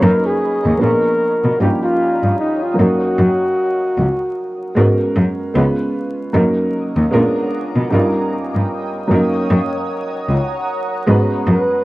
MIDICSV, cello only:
0, 0, Header, 1, 2, 480
1, 0, Start_track
1, 0, Tempo, 789474
1, 10, Time_signature, 4, 2, 24, 8
1, 7199, End_track
2, 0, Start_track
2, 0, Title_t, "Cello"
2, 0, Program_c, 0, 42
2, 16, Note_on_c, 0, 42, 114
2, 65, Note_off_c, 0, 42, 0
2, 396, Note_on_c, 0, 39, 88
2, 445, Note_off_c, 0, 39, 0
2, 498, Note_on_c, 0, 46, 87
2, 546, Note_off_c, 0, 46, 0
2, 877, Note_on_c, 0, 47, 84
2, 925, Note_off_c, 0, 47, 0
2, 977, Note_on_c, 0, 43, 86
2, 1025, Note_off_c, 0, 43, 0
2, 1357, Note_on_c, 0, 43, 72
2, 1405, Note_off_c, 0, 43, 0
2, 1701, Note_on_c, 0, 42, 83
2, 1749, Note_off_c, 0, 42, 0
2, 1937, Note_on_c, 0, 42, 93
2, 1986, Note_off_c, 0, 42, 0
2, 2420, Note_on_c, 0, 37, 85
2, 2469, Note_off_c, 0, 37, 0
2, 2899, Note_on_c, 0, 44, 101
2, 2948, Note_off_c, 0, 44, 0
2, 3138, Note_on_c, 0, 42, 92
2, 3186, Note_off_c, 0, 42, 0
2, 3379, Note_on_c, 0, 37, 107
2, 3428, Note_off_c, 0, 37, 0
2, 3859, Note_on_c, 0, 42, 95
2, 3907, Note_off_c, 0, 42, 0
2, 4236, Note_on_c, 0, 39, 94
2, 4285, Note_off_c, 0, 39, 0
2, 4336, Note_on_c, 0, 46, 96
2, 4384, Note_off_c, 0, 46, 0
2, 4716, Note_on_c, 0, 47, 88
2, 4764, Note_off_c, 0, 47, 0
2, 4818, Note_on_c, 0, 43, 88
2, 4867, Note_off_c, 0, 43, 0
2, 5196, Note_on_c, 0, 43, 70
2, 5245, Note_off_c, 0, 43, 0
2, 5540, Note_on_c, 0, 42, 90
2, 5589, Note_off_c, 0, 42, 0
2, 5778, Note_on_c, 0, 42, 97
2, 5827, Note_off_c, 0, 42, 0
2, 6258, Note_on_c, 0, 37, 84
2, 6306, Note_off_c, 0, 37, 0
2, 6735, Note_on_c, 0, 44, 94
2, 6784, Note_off_c, 0, 44, 0
2, 6975, Note_on_c, 0, 42, 97
2, 7024, Note_off_c, 0, 42, 0
2, 7199, End_track
0, 0, End_of_file